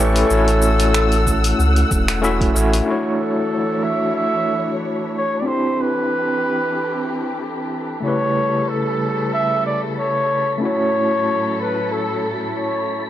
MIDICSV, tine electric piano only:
0, 0, Header, 1, 2, 480
1, 0, Start_track
1, 0, Key_signature, 2, "major"
1, 0, Tempo, 645161
1, 222, Time_signature, 4, 2, 24, 8
1, 9744, End_track
2, 0, Start_track
2, 0, Title_t, "Tine electric piano"
2, 0, Program_c, 0, 4
2, 0, Control_c, 0, 64, 127
2, 0, Note_on_c, 0, 57, 77
2, 0, Note_on_c, 0, 61, 77
2, 0, Note_on_c, 0, 64, 74
2, 0, Note_on_c, 0, 67, 73
2, 0, Note_on_c, 0, 71, 90
2, 0, Note_on_c, 0, 73, 112
2, 185, Note_off_c, 0, 57, 0
2, 192, Note_off_c, 0, 61, 0
2, 194, Note_on_c, 0, 57, 82
2, 195, Note_off_c, 0, 64, 0
2, 198, Note_off_c, 0, 67, 0
2, 202, Note_off_c, 0, 71, 0
2, 205, Note_on_c, 0, 61, 79
2, 220, Note_on_c, 0, 64, 75
2, 231, Control_c, 0, 64, 0
2, 234, Note_on_c, 0, 66, 74
2, 236, Note_off_c, 0, 73, 0
2, 247, Note_on_c, 0, 73, 85
2, 366, Control_c, 0, 64, 127
2, 1621, Note_off_c, 0, 57, 0
2, 1627, Note_off_c, 0, 61, 0
2, 1634, Note_off_c, 0, 64, 0
2, 1641, Note_off_c, 0, 66, 0
2, 1647, Note_on_c, 0, 57, 101
2, 1648, Note_off_c, 0, 73, 0
2, 1654, Note_on_c, 0, 61, 97
2, 1660, Note_on_c, 0, 64, 93
2, 1667, Note_on_c, 0, 66, 85
2, 1672, Note_on_c, 0, 76, 112
2, 1868, Note_off_c, 0, 57, 0
2, 1871, Note_off_c, 0, 61, 0
2, 1874, Note_off_c, 0, 64, 0
2, 1878, Note_off_c, 0, 66, 0
2, 1880, Note_off_c, 0, 76, 0
2, 1892, Note_on_c, 0, 57, 80
2, 1897, Note_on_c, 0, 61, 77
2, 1905, Note_on_c, 0, 64, 73
2, 1910, Note_on_c, 0, 66, 78
2, 1916, Note_on_c, 0, 73, 91
2, 2103, Note_off_c, 0, 57, 0
2, 2112, Note_on_c, 0, 57, 63
2, 2113, Note_off_c, 0, 61, 0
2, 2117, Note_off_c, 0, 64, 0
2, 2119, Note_off_c, 0, 66, 0
2, 2122, Note_off_c, 0, 73, 0
2, 2127, Note_on_c, 0, 62, 60
2, 2138, Note_on_c, 0, 64, 57
2, 2150, Control_c, 0, 64, 0
2, 2155, Note_on_c, 0, 66, 59
2, 2166, Note_on_c, 0, 73, 73
2, 2296, Control_c, 0, 64, 127
2, 4020, Note_off_c, 0, 57, 0
2, 4028, Note_off_c, 0, 62, 0
2, 4033, Note_off_c, 0, 64, 0
2, 4034, Note_on_c, 0, 60, 63
2, 4042, Note_off_c, 0, 66, 0
2, 4046, Note_on_c, 0, 62, 58
2, 4048, Note_off_c, 0, 73, 0
2, 4061, Note_on_c, 0, 64, 61
2, 4071, Control_c, 0, 64, 0
2, 4073, Note_on_c, 0, 67, 60
2, 4214, Control_c, 0, 64, 127
2, 5941, Note_off_c, 0, 60, 0
2, 5948, Note_off_c, 0, 62, 0
2, 5954, Note_on_c, 0, 57, 63
2, 5955, Note_off_c, 0, 64, 0
2, 5961, Note_off_c, 0, 67, 0
2, 5967, Note_on_c, 0, 49, 61
2, 5979, Note_on_c, 0, 64, 61
2, 5992, Control_c, 0, 64, 0
2, 5994, Note_on_c, 0, 67, 58
2, 6009, Note_on_c, 0, 71, 73
2, 6111, Control_c, 0, 64, 127
2, 7862, Note_off_c, 0, 57, 0
2, 7868, Note_off_c, 0, 49, 0
2, 7871, Note_on_c, 0, 57, 70
2, 7874, Note_off_c, 0, 64, 0
2, 7881, Note_off_c, 0, 67, 0
2, 7886, Note_on_c, 0, 61, 60
2, 7889, Note_off_c, 0, 71, 0
2, 7900, Note_on_c, 0, 64, 60
2, 7911, Control_c, 0, 64, 0
2, 7913, Note_on_c, 0, 66, 60
2, 7927, Note_on_c, 0, 73, 74
2, 8056, Control_c, 0, 64, 127
2, 9744, Note_off_c, 0, 57, 0
2, 9744, Note_off_c, 0, 61, 0
2, 9744, Note_off_c, 0, 64, 0
2, 9744, Note_off_c, 0, 66, 0
2, 9744, Note_off_c, 0, 73, 0
2, 9744, End_track
0, 0, End_of_file